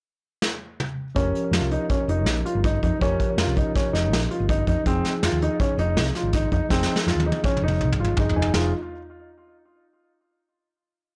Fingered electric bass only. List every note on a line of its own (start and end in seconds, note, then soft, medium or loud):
1.16 1.30 F1 medium
1.51 1.59 F2 medium
1.61 1.76 C2 medium
2.08 2.26 F1 medium
2.26 2.41 A#1 medium
2.55 2.76 G1 medium
2.83 2.90 F2 medium
3.01 3.15 F1 loud
3.37 3.45 F2 medium
3.47 3.62 C2 medium
3.93 4.12 F1 medium
4.12 4.26 A#1 medium
4.40 4.61 G1 medium
4.67 4.75 F2 medium
4.86 5.00 F1 medium
5.23 5.30 F2 medium
5.32 5.47 D#2 medium
5.77 5.97 F1 loud
5.96 6.10 C2 medium
6.23 6.45 G#1 medium
6.52 6.59 F2 medium
6.70 6.85 F1 loud
7.07 7.14 F2 medium
7.15 7.30 D#2 medium
7.62 7.82 F1 medium
7.81 7.95 C2 medium
7.99 8.16 G#1 medium
8.18 8.34 G1 medium
8.36 8.53 F1 medium
8.54 8.72 F1 medium